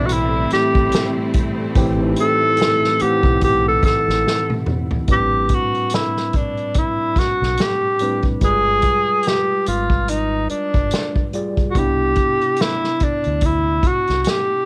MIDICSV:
0, 0, Header, 1, 7, 480
1, 0, Start_track
1, 0, Tempo, 833333
1, 1008, Time_signature, 4, 2, 24, 8
1, 8441, End_track
2, 0, Start_track
2, 0, Title_t, "Tenor saxophone"
2, 0, Program_c, 0, 66
2, 33, Note_on_c, 0, 66, 65
2, 74, Note_on_c, 0, 64, 98
2, 82, Note_off_c, 0, 66, 0
2, 301, Note_off_c, 0, 64, 0
2, 305, Note_on_c, 0, 67, 93
2, 753, Note_off_c, 0, 67, 0
2, 1271, Note_on_c, 0, 69, 117
2, 1739, Note_on_c, 0, 67, 94
2, 1747, Note_off_c, 0, 69, 0
2, 1973, Note_off_c, 0, 67, 0
2, 1983, Note_on_c, 0, 67, 92
2, 2105, Note_off_c, 0, 67, 0
2, 2120, Note_on_c, 0, 69, 93
2, 2208, Note_off_c, 0, 69, 0
2, 2219, Note_on_c, 0, 69, 91
2, 2670, Note_off_c, 0, 69, 0
2, 2949, Note_on_c, 0, 67, 88
2, 3191, Note_on_c, 0, 66, 75
2, 3200, Note_off_c, 0, 67, 0
2, 3420, Note_off_c, 0, 66, 0
2, 3423, Note_on_c, 0, 64, 78
2, 3663, Note_on_c, 0, 62, 71
2, 3671, Note_off_c, 0, 64, 0
2, 3906, Note_on_c, 0, 64, 88
2, 3915, Note_off_c, 0, 62, 0
2, 4143, Note_on_c, 0, 66, 83
2, 4152, Note_off_c, 0, 64, 0
2, 4385, Note_on_c, 0, 67, 93
2, 4394, Note_off_c, 0, 66, 0
2, 4755, Note_off_c, 0, 67, 0
2, 4862, Note_on_c, 0, 68, 108
2, 5344, Note_on_c, 0, 67, 95
2, 5353, Note_off_c, 0, 68, 0
2, 5573, Note_off_c, 0, 67, 0
2, 5576, Note_on_c, 0, 65, 82
2, 5816, Note_on_c, 0, 63, 86
2, 5825, Note_off_c, 0, 65, 0
2, 6045, Note_off_c, 0, 63, 0
2, 6049, Note_on_c, 0, 62, 73
2, 6505, Note_off_c, 0, 62, 0
2, 6741, Note_on_c, 0, 66, 66
2, 6785, Note_on_c, 0, 67, 92
2, 6794, Note_off_c, 0, 66, 0
2, 7266, Note_on_c, 0, 64, 83
2, 7275, Note_off_c, 0, 67, 0
2, 7506, Note_on_c, 0, 62, 75
2, 7515, Note_off_c, 0, 64, 0
2, 7750, Note_on_c, 0, 64, 88
2, 7759, Note_off_c, 0, 62, 0
2, 7991, Note_on_c, 0, 66, 87
2, 8000, Note_off_c, 0, 64, 0
2, 8191, Note_off_c, 0, 66, 0
2, 8191, Note_on_c, 0, 66, 71
2, 8232, Note_on_c, 0, 67, 89
2, 8241, Note_off_c, 0, 66, 0
2, 8441, Note_off_c, 0, 67, 0
2, 8441, End_track
3, 0, Start_track
3, 0, Title_t, "Tine electric piano"
3, 0, Program_c, 1, 4
3, 0, Control_c, 1, 64, 127
3, 0, Note_on_c, 1, 45, 68
3, 0, Note_on_c, 1, 52, 68
3, 0, Note_on_c, 1, 60, 71
3, 0, Note_on_c, 1, 64, 86
3, 0, Note_on_c, 1, 67, 87
3, 0, Note_on_c, 1, 69, 80
3, 687, Note_off_c, 1, 45, 0
3, 688, Note_off_c, 1, 52, 0
3, 690, Note_off_c, 1, 60, 0
3, 692, Note_off_c, 1, 64, 0
3, 1010, Note_on_c, 1, 45, 90
3, 1013, Note_on_c, 1, 52, 85
3, 1019, Note_on_c, 1, 60, 90
3, 1022, Note_off_c, 1, 67, 0
3, 1022, Note_on_c, 1, 67, 99
3, 1134, Note_off_c, 1, 45, 0
3, 1135, Note_off_c, 1, 52, 0
3, 1138, Note_off_c, 1, 60, 0
3, 1140, Note_off_c, 1, 67, 0
3, 1153, Note_on_c, 1, 45, 71
3, 1157, Note_on_c, 1, 52, 62
3, 1161, Note_on_c, 1, 60, 67
3, 1164, Note_on_c, 1, 63, 58
3, 1187, Note_off_c, 1, 63, 0
3, 1203, Note_on_c, 1, 64, 78
3, 1680, Note_off_c, 1, 45, 0
3, 1681, Note_off_c, 1, 52, 0
3, 1683, Note_off_c, 1, 60, 0
3, 1704, Note_off_c, 1, 64, 0
3, 1733, Note_on_c, 1, 45, 76
3, 1738, Note_on_c, 1, 52, 66
3, 1741, Note_on_c, 1, 60, 64
3, 1745, Note_on_c, 1, 78, 74
3, 2608, Note_off_c, 1, 45, 0
3, 2610, Note_off_c, 1, 52, 0
3, 2612, Note_off_c, 1, 60, 0
3, 2614, Note_off_c, 1, 78, 0
3, 2925, Note_on_c, 1, 45, 64
3, 2930, Note_on_c, 1, 55, 59
3, 2932, Note_on_c, 1, 60, 61
3, 2934, Note_on_c, 1, 62, 57
3, 2936, Control_c, 1, 64, 0
3, 2938, Note_off_c, 1, 69, 0
3, 2938, Note_on_c, 1, 71, 70
3, 3045, Control_c, 1, 64, 127
3, 3804, Note_off_c, 1, 45, 0
3, 3806, Note_off_c, 1, 55, 0
3, 3807, Note_off_c, 1, 60, 0
3, 3808, Note_off_c, 1, 62, 0
3, 3810, Note_off_c, 1, 71, 0
3, 4609, Note_on_c, 1, 45, 69
3, 4613, Note_on_c, 1, 55, 62
3, 4615, Note_on_c, 1, 60, 62
3, 4616, Note_on_c, 1, 62, 64
3, 4621, Note_on_c, 1, 71, 80
3, 4828, Note_off_c, 1, 45, 0
3, 4830, Note_off_c, 1, 55, 0
3, 4831, Note_off_c, 1, 60, 0
3, 4831, Note_off_c, 1, 62, 0
3, 4834, Note_off_c, 1, 71, 0
3, 4849, Note_on_c, 1, 55, 68
3, 4854, Note_on_c, 1, 65, 63
3, 4855, Note_on_c, 1, 56, 59
3, 4857, Control_c, 1, 64, 0
3, 4859, Note_on_c, 1, 71, 79
3, 4965, Control_c, 1, 64, 127
3, 5726, Note_off_c, 1, 55, 0
3, 5728, Note_off_c, 1, 65, 0
3, 5729, Note_off_c, 1, 56, 0
3, 5731, Note_off_c, 1, 71, 0
3, 6528, Note_on_c, 1, 55, 73
3, 6533, Note_on_c, 1, 65, 66
3, 6539, Note_on_c, 1, 68, 66
3, 6539, Note_on_c, 1, 74, 79
3, 6747, Note_off_c, 1, 55, 0
3, 6750, Note_off_c, 1, 65, 0
3, 6753, Note_off_c, 1, 68, 0
3, 6753, Note_off_c, 1, 74, 0
3, 6771, Note_on_c, 1, 48, 68
3, 6775, Control_c, 1, 64, 0
3, 6778, Note_on_c, 1, 59, 68
3, 6781, Note_on_c, 1, 62, 67
3, 6786, Note_on_c, 1, 64, 73
3, 6871, Control_c, 1, 64, 127
3, 7647, Note_off_c, 1, 48, 0
3, 7650, Note_off_c, 1, 59, 0
3, 7652, Note_off_c, 1, 62, 0
3, 7654, Note_off_c, 1, 64, 0
3, 8441, End_track
4, 0, Start_track
4, 0, Title_t, "String section"
4, 0, Program_c, 2, 48
4, 0, Note_on_c, 2, 55, 81
4, 0, Note_on_c, 2, 57, 73
4, 0, Note_on_c, 2, 60, 85
4, 0, Note_on_c, 2, 64, 88
4, 2905, Note_off_c, 2, 64, 0
4, 2906, Note_off_c, 2, 60, 0
4, 2907, Note_off_c, 2, 55, 0
4, 2909, Note_off_c, 2, 57, 0
4, 8441, End_track
5, 0, Start_track
5, 0, Title_t, "Fingered electric bass"
5, 0, Program_c, 3, 33
5, 0, Note_on_c, 3, 35, 82
5, 268, Note_off_c, 3, 35, 0
5, 438, Note_on_c, 3, 33, 84
5, 525, Note_off_c, 3, 33, 0
5, 1015, Note_on_c, 3, 33, 95
5, 1231, Note_off_c, 3, 33, 0
5, 1868, Note_on_c, 3, 35, 85
5, 2185, Note_off_c, 3, 35, 0
5, 2350, Note_on_c, 3, 33, 83
5, 2441, Note_off_c, 3, 33, 0
5, 2933, Note_on_c, 3, 33, 84
5, 3150, Note_off_c, 3, 33, 0
5, 4273, Note_on_c, 3, 35, 77
5, 4363, Note_off_c, 3, 35, 0
5, 4852, Note_on_c, 3, 31, 82
5, 5070, Note_off_c, 3, 31, 0
5, 5575, Note_on_c, 3, 32, 78
5, 6028, Note_off_c, 3, 32, 0
5, 6192, Note_on_c, 3, 31, 73
5, 6282, Note_off_c, 3, 31, 0
5, 6771, Note_on_c, 3, 36, 87
5, 6989, Note_off_c, 3, 36, 0
5, 7639, Note_on_c, 3, 38, 71
5, 7951, Note_off_c, 3, 38, 0
5, 8119, Note_on_c, 3, 36, 79
5, 8206, Note_off_c, 3, 36, 0
5, 8441, End_track
6, 0, Start_track
6, 0, Title_t, "Muted fingered electric bass strokes"
6, 300, Note_on_c, 9, 29, 48
6, 358, Note_off_c, 9, 29, 0
6, 1734, Note_on_c, 9, 29, 49
6, 1792, Note_off_c, 9, 29, 0
6, 2210, Note_on_c, 9, 29, 43
6, 2267, Note_off_c, 9, 29, 0
6, 4130, Note_on_c, 9, 29, 39
6, 4187, Note_off_c, 9, 29, 0
6, 7497, Note_on_c, 9, 29, 46
6, 7555, Note_off_c, 9, 29, 0
6, 8441, End_track
7, 0, Start_track
7, 0, Title_t, "Drums"
7, 52, Note_on_c, 9, 42, 87
7, 109, Note_off_c, 9, 42, 0
7, 290, Note_on_c, 9, 42, 59
7, 308, Note_on_c, 9, 38, 38
7, 347, Note_off_c, 9, 42, 0
7, 365, Note_off_c, 9, 38, 0
7, 432, Note_on_c, 9, 36, 95
7, 490, Note_off_c, 9, 36, 0
7, 528, Note_on_c, 9, 42, 82
7, 545, Note_on_c, 9, 38, 119
7, 585, Note_off_c, 9, 42, 0
7, 602, Note_off_c, 9, 38, 0
7, 770, Note_on_c, 9, 42, 69
7, 775, Note_on_c, 9, 36, 94
7, 827, Note_off_c, 9, 42, 0
7, 832, Note_off_c, 9, 36, 0
7, 1009, Note_on_c, 9, 42, 76
7, 1011, Note_on_c, 9, 36, 108
7, 1067, Note_off_c, 9, 42, 0
7, 1068, Note_off_c, 9, 36, 0
7, 1245, Note_on_c, 9, 42, 74
7, 1303, Note_off_c, 9, 42, 0
7, 1479, Note_on_c, 9, 42, 70
7, 1506, Note_on_c, 9, 38, 105
7, 1537, Note_off_c, 9, 42, 0
7, 1563, Note_off_c, 9, 38, 0
7, 1637, Note_on_c, 9, 38, 32
7, 1695, Note_off_c, 9, 38, 0
7, 1726, Note_on_c, 9, 42, 73
7, 1783, Note_off_c, 9, 42, 0
7, 1863, Note_on_c, 9, 36, 95
7, 1920, Note_off_c, 9, 36, 0
7, 1965, Note_on_c, 9, 42, 88
7, 1969, Note_on_c, 9, 36, 88
7, 2023, Note_off_c, 9, 42, 0
7, 2027, Note_off_c, 9, 36, 0
7, 2205, Note_on_c, 9, 36, 104
7, 2207, Note_on_c, 9, 42, 64
7, 2225, Note_on_c, 9, 38, 38
7, 2263, Note_off_c, 9, 36, 0
7, 2265, Note_off_c, 9, 42, 0
7, 2283, Note_off_c, 9, 38, 0
7, 2359, Note_on_c, 9, 38, 34
7, 2416, Note_off_c, 9, 38, 0
7, 2462, Note_on_c, 9, 38, 61
7, 2520, Note_off_c, 9, 38, 0
7, 2591, Note_on_c, 9, 48, 61
7, 2649, Note_off_c, 9, 48, 0
7, 2686, Note_on_c, 9, 45, 90
7, 2744, Note_off_c, 9, 45, 0
7, 2826, Note_on_c, 9, 43, 83
7, 2884, Note_off_c, 9, 43, 0
7, 2923, Note_on_c, 9, 42, 69
7, 2927, Note_on_c, 9, 36, 100
7, 2981, Note_off_c, 9, 42, 0
7, 2985, Note_off_c, 9, 36, 0
7, 3161, Note_on_c, 9, 42, 64
7, 3167, Note_on_c, 9, 36, 80
7, 3219, Note_off_c, 9, 42, 0
7, 3224, Note_off_c, 9, 36, 0
7, 3309, Note_on_c, 9, 42, 34
7, 3367, Note_off_c, 9, 42, 0
7, 3396, Note_on_c, 9, 42, 66
7, 3422, Note_on_c, 9, 38, 98
7, 3453, Note_off_c, 9, 42, 0
7, 3480, Note_off_c, 9, 38, 0
7, 3553, Note_on_c, 9, 38, 29
7, 3611, Note_off_c, 9, 38, 0
7, 3646, Note_on_c, 9, 42, 64
7, 3651, Note_on_c, 9, 36, 81
7, 3704, Note_off_c, 9, 42, 0
7, 3709, Note_off_c, 9, 36, 0
7, 3786, Note_on_c, 9, 42, 27
7, 3843, Note_off_c, 9, 42, 0
7, 3884, Note_on_c, 9, 42, 76
7, 3889, Note_on_c, 9, 36, 85
7, 3942, Note_off_c, 9, 42, 0
7, 3947, Note_off_c, 9, 36, 0
7, 4124, Note_on_c, 9, 36, 85
7, 4127, Note_on_c, 9, 42, 57
7, 4145, Note_on_c, 9, 38, 33
7, 4182, Note_off_c, 9, 36, 0
7, 4185, Note_off_c, 9, 42, 0
7, 4203, Note_off_c, 9, 38, 0
7, 4280, Note_on_c, 9, 38, 28
7, 4338, Note_off_c, 9, 38, 0
7, 4363, Note_on_c, 9, 42, 71
7, 4380, Note_on_c, 9, 38, 106
7, 4421, Note_off_c, 9, 42, 0
7, 4437, Note_off_c, 9, 38, 0
7, 4602, Note_on_c, 9, 42, 63
7, 4660, Note_off_c, 9, 42, 0
7, 4737, Note_on_c, 9, 42, 29
7, 4742, Note_on_c, 9, 36, 77
7, 4795, Note_off_c, 9, 42, 0
7, 4800, Note_off_c, 9, 36, 0
7, 4844, Note_on_c, 9, 42, 61
7, 4846, Note_on_c, 9, 36, 92
7, 4901, Note_off_c, 9, 42, 0
7, 4904, Note_off_c, 9, 36, 0
7, 5080, Note_on_c, 9, 42, 64
7, 5087, Note_on_c, 9, 36, 76
7, 5138, Note_off_c, 9, 42, 0
7, 5144, Note_off_c, 9, 36, 0
7, 5315, Note_on_c, 9, 42, 64
7, 5342, Note_on_c, 9, 38, 97
7, 5373, Note_off_c, 9, 42, 0
7, 5399, Note_off_c, 9, 38, 0
7, 5566, Note_on_c, 9, 42, 65
7, 5624, Note_off_c, 9, 42, 0
7, 5702, Note_on_c, 9, 36, 89
7, 5759, Note_off_c, 9, 36, 0
7, 5807, Note_on_c, 9, 42, 86
7, 5864, Note_off_c, 9, 42, 0
7, 6045, Note_on_c, 9, 42, 55
7, 6103, Note_off_c, 9, 42, 0
7, 6185, Note_on_c, 9, 42, 32
7, 6188, Note_on_c, 9, 36, 86
7, 6243, Note_off_c, 9, 42, 0
7, 6246, Note_off_c, 9, 36, 0
7, 6283, Note_on_c, 9, 42, 73
7, 6300, Note_on_c, 9, 38, 105
7, 6340, Note_off_c, 9, 42, 0
7, 6357, Note_off_c, 9, 38, 0
7, 6426, Note_on_c, 9, 36, 79
7, 6484, Note_off_c, 9, 36, 0
7, 6527, Note_on_c, 9, 42, 63
7, 6584, Note_off_c, 9, 42, 0
7, 6666, Note_on_c, 9, 36, 84
7, 6666, Note_on_c, 9, 42, 31
7, 6724, Note_off_c, 9, 36, 0
7, 6724, Note_off_c, 9, 42, 0
7, 6767, Note_on_c, 9, 42, 67
7, 6769, Note_on_c, 9, 36, 98
7, 6825, Note_off_c, 9, 42, 0
7, 6826, Note_off_c, 9, 36, 0
7, 7001, Note_on_c, 9, 42, 66
7, 7008, Note_on_c, 9, 36, 80
7, 7058, Note_off_c, 9, 42, 0
7, 7066, Note_off_c, 9, 36, 0
7, 7150, Note_on_c, 9, 42, 33
7, 7208, Note_off_c, 9, 42, 0
7, 7237, Note_on_c, 9, 42, 70
7, 7263, Note_on_c, 9, 38, 99
7, 7295, Note_off_c, 9, 42, 0
7, 7321, Note_off_c, 9, 38, 0
7, 7396, Note_on_c, 9, 38, 32
7, 7454, Note_off_c, 9, 38, 0
7, 7488, Note_on_c, 9, 42, 63
7, 7493, Note_on_c, 9, 36, 84
7, 7546, Note_off_c, 9, 42, 0
7, 7551, Note_off_c, 9, 36, 0
7, 7625, Note_on_c, 9, 42, 32
7, 7682, Note_off_c, 9, 42, 0
7, 7724, Note_on_c, 9, 42, 77
7, 7730, Note_on_c, 9, 36, 85
7, 7782, Note_off_c, 9, 42, 0
7, 7788, Note_off_c, 9, 36, 0
7, 7967, Note_on_c, 9, 36, 90
7, 7967, Note_on_c, 9, 42, 59
7, 8024, Note_off_c, 9, 36, 0
7, 8024, Note_off_c, 9, 42, 0
7, 8107, Note_on_c, 9, 42, 33
7, 8118, Note_on_c, 9, 38, 31
7, 8165, Note_off_c, 9, 42, 0
7, 8176, Note_off_c, 9, 38, 0
7, 8204, Note_on_c, 9, 42, 77
7, 8221, Note_on_c, 9, 38, 110
7, 8261, Note_off_c, 9, 42, 0
7, 8278, Note_off_c, 9, 38, 0
7, 8441, End_track
0, 0, End_of_file